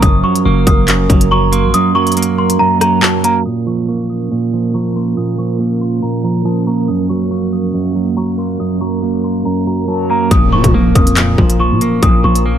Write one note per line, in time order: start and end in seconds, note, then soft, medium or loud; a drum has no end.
0.00 0.23 F#1 loud
0.00 0.87 F#2 loud
0.00 3.42 F#3 medium
0.00 3.42 A#3 medium
0.00 3.41 C#4 medium
0.00 3.41 A#4 medium
0.00 0.19 D#6 loud
0.00 kick loud
0.00 closed hi-hat medium
0.24 1.09 F#3 medium
0.24 0.40 C#6 medium
0.35 closed hi-hat medium
0.45 0.66 F#1 loud
0.45 1.51 A#3 medium
0.45 1.27 C#6 medium
0.67 1.08 F#1 loud
0.67 1.27 D#6 medium
0.67 kick loud
0.67 closed hi-hat medium
0.88 1.73 F#2 medium
0.88 clap loud
0.88 closed hi-hat medium
1.10 1.65 F#1 loud
1.10 1.31 F#3 medium
1.10 kick medium
1.10 closed hi-hat medium
1.21 closed hi-hat medium
1.31 1.94 F#3 medium
1.31 1.51 A#5 medium
1.31 1.72 C#6 medium
1.52 2.16 A#3 medium
1.52 1.73 C6 medium
1.52 closed hi-hat medium
1.64 1.73 A#1 loud
1.74 2.59 F#2 loud
1.74 1.90 D#6 loud
1.74 closed hi-hat medium
1.95 2.80 F#3 medium
1.95 2.16 A#5 medium
1.95 2.11 C#6 medium
2.07 closed hi-hat soft
2.12 closed hi-hat medium
2.17 3.23 A#3 medium
2.17 closed hi-hat medium
2.23 closed hi-hat medium
2.38 2.55 C6 medium
2.50 closed hi-hat medium
2.59 3.46 F#2 medium
2.59 2.76 A#5 medium
2.81 3.01 F#3 medium
2.81 2.98 A#5 medium
2.81 cross-stick medium
2.81 closed hi-hat medium
3.02 3.45 F#3 medium
3.02 3.19 A5 medium
3.02 clap loud
3.24 3.45 A#3 medium
3.24 3.41 A#5 medium
3.24 closed hi-hat medium
3.45 4.30 A#2 medium
3.45 6.85 F3 medium
3.45 10.27 A#3 medium
3.45 10.27 C#4 medium
3.45 6.85 A#4 medium
3.45 3.62 D#6 loud
3.66 4.52 F3 medium
3.66 3.83 C#6 medium
3.88 4.95 A#3 medium
3.88 4.70 C#6 medium
4.10 4.70 D#6 medium
4.31 5.16 A#2 medium
4.53 4.73 F3 medium
4.74 5.37 F3 medium
4.74 4.94 A#5 medium
4.74 5.14 C#6 medium
4.96 5.59 A#3 medium
4.96 5.16 C6 medium
5.17 6.02 A#2 medium
5.17 5.33 D#6 loud
5.38 6.23 F3 medium
5.38 5.55 C#6 medium
5.38 5.59 C#6 medium
5.60 6.67 A#3 medium
5.81 5.98 C6 medium
6.02 6.88 A#2 medium
6.02 6.19 A#5 medium
6.24 6.44 F3 medium
6.24 6.40 A#5 medium
6.45 6.88 F3 medium
6.45 6.62 A5 medium
6.45 6.66 D#6 medium
6.67 6.89 A#3 medium
6.67 6.83 A#5 medium
6.67 6.87 C#6 medium
6.88 7.73 F#2 medium
6.88 10.28 F#3 medium
6.88 10.28 A#4 medium
6.88 7.04 D#6 medium
7.09 7.94 F#3 medium
7.09 7.26 C#6 medium
7.31 8.36 A#3 medium
7.31 8.13 C#6 medium
7.53 8.13 D#6 medium
7.74 8.59 F#2 medium
7.95 8.16 F#3 medium
8.17 8.80 F#3 medium
8.17 8.37 A#5 medium
8.17 8.57 C#6 medium
8.38 9.01 A#3 medium
8.38 8.59 C6 medium
8.60 9.45 F#2 medium
8.60 8.76 D#6 loud
8.81 9.65 F#3 medium
8.81 9.01 A#5 medium
8.81 8.97 C#6 medium
9.03 10.08 A#3 medium
9.24 9.40 C6 medium
9.45 10.31 F#2 medium
9.45 9.62 A#5 medium
9.67 9.87 F#3 medium
9.67 9.83 A#5 medium
9.88 10.31 F#3 medium
9.88 10.05 A5 medium
10.10 10.31 A#3 medium
10.10 10.26 A#5 medium
10.31 10.54 A#1 loud
10.31 11.16 A#2 medium
10.31 12.58 F3 medium
10.31 12.58 A#3 medium
10.31 12.58 C#4 medium
10.31 12.58 A#4 medium
10.31 10.48 D#6 loud
10.31 kick loud
10.31 closed hi-hat medium
10.31 impact medium
10.52 10.63 A#2 loud
10.52 11.38 F3 medium
10.52 10.69 C#6 medium
10.64 10.74 A#2 loud
10.64 kick loud
10.64 closed hi-hat medium
10.74 10.95 A#1 loud
10.74 11.80 A#3 medium
10.95 11.37 F2 loud
10.95 11.56 D#6 medium
10.95 kick loud
10.95 closed hi-hat medium
11.07 closed hi-hat medium
11.17 12.02 A#2 medium
11.17 clap loud
11.17 closed hi-hat medium
11.38 11.72 A#1 loud
11.38 11.58 F3 medium
11.38 kick medium
11.50 closed hi-hat medium
11.60 12.23 F3 medium
11.60 12.00 C#6 medium
11.71 11.81 A#2 loud
11.81 12.44 A#3 medium
11.81 closed hi-hat medium
12.03 12.23 A#1 loud
12.03 12.58 A#2 medium
12.03 12.19 D#6 loud
12.03 kick loud
12.03 closed hi-hat medium
12.24 12.58 A#1 loud
12.24 12.58 F3 medium
12.24 12.40 C#6 medium
12.35 closed hi-hat medium
12.46 12.58 A#3 loud